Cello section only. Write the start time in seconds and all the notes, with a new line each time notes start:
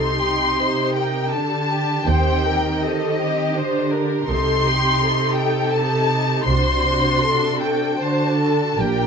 Already playing: C3
1.33 D3
2.07 D#3
3.57 D3
4.29 C3
6.48 C3
8.02 D3
8.79 A#2